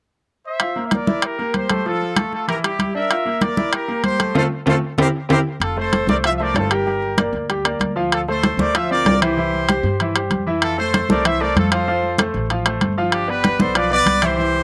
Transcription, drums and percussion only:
0.60 high conga soft
0.60 high timbale medium
0.76 high conga soft
0.91 high conga medium
0.91 high timbale medium
1.07 high conga medium
1.22 high conga soft
1.22 high timbale medium
1.39 high conga soft
1.54 high conga medium
1.54 high timbale medium
1.70 high conga medium
1.70 high timbale medium
1.86 high conga soft
2.01 high conga soft
2.16 high conga medium
2.16 high timbale medium
2.33 high conga soft
2.48 high conga soft
2.48 high timbale medium
2.64 high conga soft
2.64 high timbale medium
2.79 high conga medium
2.79 high timbale medium
3.11 high conga soft
3.11 high timbale medium
3.26 high conga soft
3.41 high conga medium
3.41 high timbale medium
3.57 high conga medium
3.73 high conga soft
3.73 high timbale medium
3.89 high conga soft
4.04 high conga medium
4.04 high timbale medium
4.20 high conga medium
4.20 high timbale medium
4.35 low conga medium
4.35 high timbale medium
4.67 low conga medium
4.67 high timbale medium
4.98 low conga medium
4.98 high timbale medium
5.30 low conga medium
5.30 high timbale medium
5.61 high conga soft
5.61 high timbale medium
5.77 high conga soft
5.93 high conga medium
5.93 high timbale medium
6.09 high conga medium
6.24 high conga soft
6.24 high timbale medium
6.40 high conga soft
6.55 high conga medium
6.55 high timbale medium
6.55 low timbale medium
6.71 high timbale medium
6.87 high conga soft
7.02 high conga soft
7.18 high conga medium
7.18 high timbale medium
7.34 high conga soft
7.50 high conga soft
7.50 high timbale medium
7.65 high conga soft
7.65 high timbale medium
7.80 high conga medium
7.80 high timbale medium
8.12 high conga soft
8.12 high timbale medium
8.28 high conga soft
8.43 high conga medium
8.43 high timbale medium
8.59 high conga medium
8.75 high conga soft
8.75 high timbale medium
8.90 high conga soft
9.06 high conga medium
9.06 high timbale medium
9.06 low timbale medium
9.22 high timbale medium
9.38 high conga soft
9.54 high conga soft
9.69 high conga medium
9.69 high timbale medium
9.85 high conga soft
10.00 high conga soft
10.00 high timbale medium
10.16 high conga soft
10.16 high timbale medium
10.31 high conga medium
10.31 high timbale medium
10.62 high conga soft
10.62 high timbale medium
10.79 high conga soft
10.94 high conga medium
10.94 high timbale medium
11.10 high conga medium
11.25 high conga soft
11.25 high timbale medium
11.42 high conga soft
11.56 high conga medium
11.56 high timbale medium
11.72 high timbale medium
11.87 high conga soft
12.03 high conga soft
12.18 high conga medium
12.18 high timbale medium
12.34 high conga soft
12.50 high conga soft
12.50 high timbale medium
12.66 high conga soft
12.66 high timbale medium
12.81 high conga medium
12.81 high timbale medium
13.12 high conga soft
13.12 high timbale medium
13.29 high conga soft
13.44 high conga medium
13.44 high timbale medium
13.60 high conga medium
13.75 high conga soft
13.75 high timbale medium
13.92 high conga soft
14.06 high conga medium
14.06 high timbale medium
14.22 high timbale medium
14.39 high conga soft
14.54 high conga soft

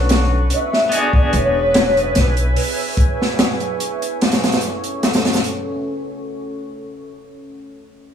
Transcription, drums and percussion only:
0.09 snare loud
0.09 closed hi-hat medium
0.50 closed hi-hat medium
0.73 snare soft
0.92 closed hi-hat medium
1.13 kick medium
1.33 closed hi-hat medium
1.74 snare loud
1.74 closed hi-hat medium
1.97 closed hi-hat soft
2.15 snare soft
2.15 closed hi-hat medium
2.37 closed hi-hat soft
2.56 open hi-hat medium
2.97 kick medium
2.97 closed hi-hat medium
3.22 snare soft
3.39 snare loud
3.39 closed hi-hat medium
3.60 closed hi-hat soft
3.80 closed hi-hat medium
4.02 closed hi-hat soft
4.21 snare medium
4.21 closed hi-hat medium
4.32 snare medium
4.32 closed hi-hat medium
4.44 snare medium
4.44 closed hi-hat medium
4.52 snare medium
4.52 closed hi-hat medium
4.61 closed hi-hat medium
4.84 closed hi-hat soft
5.03 snare medium
5.03 closed hi-hat medium
5.13 snare loud
5.13 closed hi-hat medium
5.25 snare medium
5.25 closed hi-hat medium
5.33 snare medium
5.33 closed hi-hat medium
5.44 closed hi-hat medium

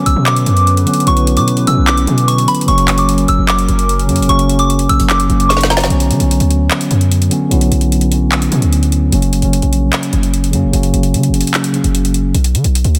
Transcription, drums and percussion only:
0.06 closed hi-hat medium
0.26 clap loud
0.26 closed hi-hat medium
0.36 closed hi-hat medium
0.46 closed hi-hat medium
0.57 closed hi-hat medium
0.67 closed hi-hat medium
0.77 closed hi-hat medium
0.87 closed hi-hat medium
0.94 closed hi-hat medium
1.00 closed hi-hat medium
1.07 closed hi-hat medium
1.17 closed hi-hat medium
1.27 closed hi-hat medium
1.37 closed hi-hat medium
1.48 closed hi-hat medium
1.57 closed hi-hat medium
1.67 closed hi-hat medium
1.87 clap loud
1.87 closed hi-hat medium
1.98 closed hi-hat medium
2.07 closed hi-hat medium
2.18 closed hi-hat soft
2.28 closed hi-hat medium
2.38 closed hi-hat medium
2.48 closed hi-hat medium
2.55 closed hi-hat medium
2.61 closed hi-hat medium
2.68 closed hi-hat medium
2.78 closed hi-hat medium
2.88 clap loud
2.88 closed hi-hat medium
2.98 closed hi-hat medium
3.09 closed hi-hat medium
3.18 closed hi-hat medium
3.28 closed hi-hat medium
3.49 clap loud
3.49 closed hi-hat medium
3.59 closed hi-hat medium
3.69 closed hi-hat medium
3.79 closed hi-hat medium
3.89 closed hi-hat medium
3.99 closed hi-hat medium
4.09 closed hi-hat medium
4.16 closed hi-hat medium
4.22 closed hi-hat medium
4.29 closed hi-hat medium
4.39 closed hi-hat medium
4.49 closed hi-hat medium
4.59 closed hi-hat medium
4.70 closed hi-hat medium
4.79 closed hi-hat medium
4.89 closed hi-hat medium
4.89 open hi-hat medium
5.00 closed hi-hat medium
5.10 clap loud
5.10 closed hi-hat medium
5.20 closed hi-hat medium
5.30 closed hi-hat medium
5.40 closed hi-hat medium
5.50 snare medium
5.50 closed hi-hat medium
5.57 snare medium
5.57 closed hi-hat medium
5.63 snare medium
5.70 snare medium
5.70 closed hi-hat medium
5.77 snare loud
5.77 closed hi-hat medium
5.84 snare loud
5.90 closed hi-hat medium
6.00 closed hi-hat medium
6.11 closed hi-hat medium
6.20 closed hi-hat medium
6.31 closed hi-hat medium
6.40 closed hi-hat medium
6.51 closed hi-hat medium
6.71 clap loud
6.71 closed hi-hat medium
6.81 closed hi-hat medium
6.91 closed hi-hat medium
7.01 closed hi-hat soft
7.12 closed hi-hat medium
7.22 closed hi-hat medium
7.31 closed hi-hat medium
7.51 closed hi-hat medium
7.61 closed hi-hat medium
7.72 closed hi-hat medium
7.81 closed hi-hat medium
7.92 closed hi-hat medium
8.01 closed hi-hat medium
8.12 closed hi-hat medium
8.32 clap loud
8.32 closed hi-hat medium
8.42 closed hi-hat medium
8.52 closed hi-hat medium
8.62 closed hi-hat medium
8.73 closed hi-hat medium
8.83 closed hi-hat medium
8.92 closed hi-hat medium
9.12 closed hi-hat medium
9.22 closed hi-hat medium
9.33 closed hi-hat medium
9.42 closed hi-hat medium
9.53 closed hi-hat medium
9.62 closed hi-hat medium
9.73 closed hi-hat medium
9.93 clap loud
9.93 closed hi-hat medium
10.03 closed hi-hat medium
10.13 closed hi-hat medium
10.23 closed hi-hat soft
10.34 closed hi-hat medium
10.44 closed hi-hat medium
10.53 closed hi-hat medium
10.73 closed hi-hat medium
10.83 closed hi-hat medium
10.94 closed hi-hat medium
11.03 closed hi-hat medium
11.14 closed hi-hat medium
11.23 closed hi-hat medium
11.34 closed hi-hat medium
11.41 closed hi-hat medium
11.47 closed hi-hat medium
11.54 clap loud
11.54 closed hi-hat medium
11.64 closed hi-hat medium
11.74 closed hi-hat medium
11.84 closed hi-hat medium
11.95 closed hi-hat medium
12.05 closed hi-hat medium
12.14 closed hi-hat medium
12.35 closed hi-hat medium
12.44 closed hi-hat medium
12.55 closed hi-hat medium
12.64 closed hi-hat medium
12.75 closed hi-hat medium
12.84 closed hi-hat medium
12.95 closed hi-hat medium

